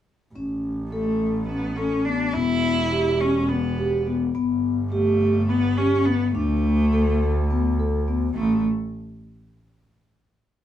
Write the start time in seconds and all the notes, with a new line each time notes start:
0.34 A1 C#4
0.91 A3 A4
1.49 B3 C#4
1.77 C#4 A4
2.05 B3 D4
2.34 E1 B3 E4
2.92 G4
3.21 C#4
3.49 B3
3.78 G4
4.07 B3
4.34 G1 B3
4.92 A3 G4
5.49 B3
5.77 C#4 G4
6.06 B3
6.34 D2 A3 D4
6.93 A4
7.50 B3
7.79 A4
8.08 B3
8.34 A1 A3